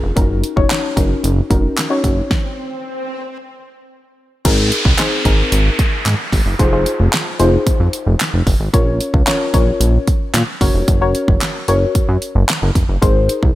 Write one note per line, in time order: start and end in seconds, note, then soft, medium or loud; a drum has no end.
0.03 0.12 F1 medium
0.16 0.43 F#1 loud
0.16 0.49 C#4 medium
0.16 0.49 D#4 medium
0.16 0.49 F#4 medium
0.16 0.49 A#4 loud
0.16 kick loud
0.16 closed hi-hat medium
0.16 swell medium
0.44 closed hi-hat medium
0.56 0.66 F1 medium
0.56 0.89 C#4 medium
0.56 0.89 D#4 medium
0.56 0.89 F#4 medium
0.56 0.89 C#5 loud
0.56 kick medium
0.70 snare medium
0.70 clap loud
0.70 closed hi-hat loud
0.96 1.15 F#1 loud
0.96 1.40 C#4 medium
0.96 1.40 D#4 medium
0.96 1.40 F#4 medium
0.96 1.40 A#4 medium
0.96 kick medium
0.96 closed hi-hat medium
1.24 1.41 F#1 loud
1.24 closed hi-hat medium
1.50 1.68 F1 medium
1.50 1.83 C#4 medium
1.50 1.83 D#4 medium
1.50 1.83 F#4 medium
1.50 1.83 A#4 loud
1.50 kick loud
1.50 closed hi-hat medium
1.78 snare medium
1.78 clap loud
1.78 closed hi-hat medium
1.90 2.23 C#4 medium
1.90 2.23 D#4 medium
1.90 2.23 F#4 medium
1.90 2.23 C#5 loud
2.04 2.21 F#1 loud
2.04 kick medium
2.04 closed hi-hat medium
2.31 kick loud
2.31 snare medium
4.45 4.71 G#1 loud
4.45 4.88 C4 medium
4.45 4.88 D#4 medium
4.45 4.88 G#4 medium
4.45 4.88 A#4 loud
4.45 kick loud
4.45 closed hi-hat medium
4.45 crash loud
4.45 downlifter medium
4.72 closed hi-hat medium
4.85 4.94 C2 medium
4.85 kick loud
4.98 5.20 C4 medium
4.98 5.20 D#4 medium
4.98 5.20 G#4 medium
4.98 5.20 C5 loud
4.98 snare medium
4.98 clap loud
4.98 closed hi-hat medium
5.25 5.43 G#1 medium
5.25 6.11 C4 medium
5.25 6.12 D#4 medium
5.25 6.12 G#4 medium
5.25 6.12 A#4 loud
5.25 kick medium
5.25 closed hi-hat medium
5.52 5.70 G#1 medium
5.52 closed hi-hat medium
5.79 kick loud
5.79 closed hi-hat medium
6.06 6.15 G#2 loud
6.06 snare medium
6.06 clap loud
6.06 closed hi-hat medium
6.32 6.41 G#1 medium
6.32 kick medium
6.32 open hi-hat medium
6.46 6.55 F#1 loud
6.59 6.86 F1 loud
6.59 6.70 D#4 medium
6.59 6.70 F4 medium
6.59 6.70 G#4 medium
6.59 6.70 C5 loud
6.59 kick loud
6.59 closed hi-hat medium
6.72 7.26 D#4 medium
6.72 7.26 F4 medium
6.72 7.27 G#4 medium
6.72 7.27 C5 medium
6.86 closed hi-hat medium
7.00 7.08 F1 loud
7.13 snare medium
7.13 clap loud
7.13 closed hi-hat loud
7.39 7.57 F1 loud
7.39 8.26 D#4 medium
7.39 8.26 F4 medium
7.39 8.26 G#4 medium
7.39 8.26 C5 loud
7.39 closed hi-hat medium
7.67 7.72 F2 soft
7.67 kick loud
7.67 closed hi-hat medium
7.80 7.89 F2 loud
7.93 closed hi-hat medium
8.07 8.15 F1 medium
8.20 snare medium
8.20 clap loud
8.20 closed hi-hat medium
8.33 8.42 F1 medium
8.47 8.56 F#1 loud
8.47 kick medium
8.47 open hi-hat medium
8.60 8.69 G#1 loud
8.73 9.00 A#1 loud
8.73 9.17 C#4 medium
8.73 9.17 F4 medium
8.73 9.17 A#4 medium
8.73 9.17 C#5 loud
8.73 kick loud
8.73 closed hi-hat medium
9.01 closed hi-hat medium
9.14 9.23 C#2 medium
9.14 kick loud
9.27 9.49 C#4 medium
9.27 9.49 F4 medium
9.27 9.49 A#4 medium
9.27 9.49 C#5 medium
9.27 snare medium
9.27 clap loud
9.27 closed hi-hat medium
9.54 9.71 A#1 loud
9.54 10.40 C#4 medium
9.54 10.40 F4 medium
9.54 10.40 A#4 medium
9.54 10.40 C#5 loud
9.54 kick medium
9.54 closed hi-hat medium
9.80 9.98 A#1 loud
9.80 closed hi-hat loud
10.07 kick loud
10.07 closed hi-hat medium
10.34 10.43 A#2 loud
10.34 snare medium
10.34 clap loud
10.34 closed hi-hat loud
10.61 10.70 F#1 medium
10.61 10.93 C#4 medium
10.61 10.93 F#4 medium
10.61 10.93 A#4 medium
10.61 10.94 C#5 loud
10.61 kick medium
10.61 open hi-hat medium
10.74 10.83 F1 medium
10.88 11.14 F#1 loud
10.88 kick loud
10.88 closed hi-hat medium
11.01 11.55 C#4 medium
11.01 11.55 F#4 medium
11.01 11.55 A#4 medium
11.01 11.55 C#5 loud
11.15 closed hi-hat medium
11.28 11.37 F#1 medium
11.28 kick loud
11.41 snare medium
11.41 clap loud
11.41 closed hi-hat loud
11.68 11.86 F#1 loud
11.68 12.54 C#4 medium
11.68 12.54 F#4 medium
11.68 12.54 A#4 medium
11.68 12.54 C#5 loud
11.68 closed hi-hat medium
11.95 12.01 F#2 soft
11.95 kick medium
11.95 closed hi-hat medium
12.09 12.17 F#2 loud
12.22 closed hi-hat medium
12.35 12.44 F#1 loud
12.49 snare medium
12.49 clap loud
12.49 closed hi-hat medium
12.62 12.71 F#1 medium
12.75 12.84 F1 loud
12.75 kick medium
12.75 closed hi-hat medium
12.89 12.98 F#1 medium
13.02 13.29 G#1 loud
13.02 13.45 D#4 medium
13.02 13.45 G#4 medium
13.02 13.45 A#4 medium
13.02 13.45 C5 loud
13.02 kick loud
13.02 closed hi-hat medium
13.29 closed hi-hat medium
13.43 13.51 C2 medium
13.43 kick medium